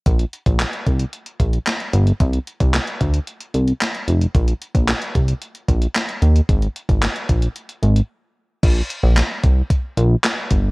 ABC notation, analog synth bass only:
X:1
M:4/4
L:1/16
Q:1/4=112
K:Gm
V:1 name="Analog synth bass" clef=bass
B,,,2 z B,,,2 z C,,2 z2 B,,,2 z2 G,,,2 | C,,2 z C,,2 z D,,2 z2 C,,2 z2 F,,,2 | B,,,2 z B,,,2 z C,,2 z2 B,,,2 z2 E,,2 | _A,,,2 z A,,,2 z B,,,2 z2 A,,,2 z4 |
B,,,2 z B,,,2 z C,,2 z2 B,,,2 z2 G,,,2 |]